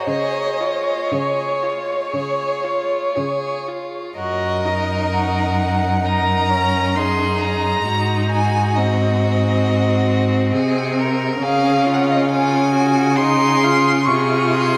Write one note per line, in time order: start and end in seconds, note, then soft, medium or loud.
0.05 0.97 C#3 soft
0.05 0.62 G#4 soft
0.05 3.63 C#5 medium
0.05 1.14 D#5 medium
0.61 1.14 F4 soft
1.12 2.00 C#3 soft
1.12 1.65 G#4 soft
1.12 3.68 C#5 soft
1.63 2.12 F4 soft
2.13 3.02 C#3 soft
2.13 2.66 G#4 soft
2.64 3.17 F4 soft
3.16 4.04 C#3 soft
3.16 3.69 G#4 soft
3.68 4.18 F4 soft
4.17 7.83 F#2 soft
4.17 4.67 F#4 soft
4.17 6.01 A#4 soft
4.17 5.15 D#5 medium
4.65 6.03 D#4 soft
5.13 6.07 F#5 medium
6.04 6.52 D#4 soft
6.04 6.99 A#4 soft
6.04 6.98 A#5 medium
6.51 6.97 C#4 medium
6.96 7.87 D#4 soft
6.96 7.88 G#4 soft
6.96 7.42 C6 medium
7.41 8.31 A#5 medium
7.87 10.55 G#2 medium
7.87 8.79 D#4 soft
7.87 10.51 F#4 soft
8.32 8.77 G#5 medium
8.76 11.42 C4 medium
8.76 10.98 D#5 medium
10.53 11.41 C3 medium
10.53 11.00 G#4 medium
10.99 11.44 A#4 medium
11.42 14.09 C#3 medium
11.42 13.15 C#4 medium
11.42 11.88 G#4 medium
11.42 11.95 F5 medium
11.87 12.30 F4 medium
11.94 12.05 F#5 medium
12.03 12.13 F5 medium
12.11 12.21 D#5 medium
12.19 12.30 F5 medium
12.29 12.73 F4 medium
12.29 13.17 G#5 medium
12.73 13.19 F#4 medium
13.16 13.65 D#4 medium
13.16 14.06 G#4 medium
13.16 14.07 C6 medium
13.63 14.07 F4 medium
14.06 14.78 C3 medium
14.06 14.78 F4 medium
14.06 14.78 G#4 medium
14.06 14.53 C#6 medium
14.51 14.78 C6 medium